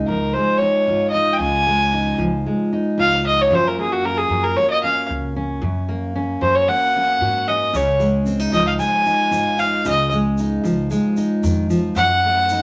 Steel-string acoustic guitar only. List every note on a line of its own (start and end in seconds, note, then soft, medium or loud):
0.00 0.35 G#3 medium
0.00 0.61 D#4 soft
0.00 0.87 F4 medium
0.09 1.97 F3 medium
0.36 1.66 G#3 soft
0.62 1.13 D#4 medium
0.88 2.98 F4 medium
1.15 1.38 D#4 medium
1.40 2.19 C#3 medium
1.67 2.45 G#3 medium
1.94 2.72 D#4 medium
2.19 3.51 F3 medium
2.46 3.51 G#3 medium
2.73 3.23 D#4 medium
2.99 3.53 F4 medium
3.51 5.59 F#2 medium
3.51 4.30 F#3 medium
3.51 3.78 A#3 medium
3.51 4.04 C#4 medium
3.51 5.66 F4 medium
3.78 4.57 A#3 soft
4.04 4.83 C#4 medium
4.30 5.59 F#3 medium
4.57 5.59 A#3 medium
4.83 5.36 C#4 medium
5.36 6.15 C#4 medium
5.63 7.71 F#2 medium
5.89 6.67 A#3 medium
6.16 6.96 C#4 medium
6.41 7.70 F#3 medium
6.68 7.70 A#3 medium
6.96 7.48 C#4 medium
7.22 7.71 F#4 medium
7.48 8.26 C#4 medium
7.73 8.53 C#3 medium
8.00 8.78 G#3 medium
8.26 8.39 C4 medium
8.39 9.05 D#4 soft
8.52 9.81 F3 medium
8.79 10.11 G#3 medium
9.06 9.58 D#4 medium
9.32 11.96 F4 medium
9.58 9.88 D#4 medium
9.85 10.64 C#3 medium
10.13 10.90 G#3 medium
10.40 11.16 D#4 medium
10.64 11.43 F3 medium
10.91 11.96 G#3 medium
11.17 11.93 D#4 medium
11.43 11.70 D#3 medium
11.70 11.96 F3 medium
11.97 12.62 F#2 medium
12.24 12.62 A3 medium
12.51 12.62 D#4 medium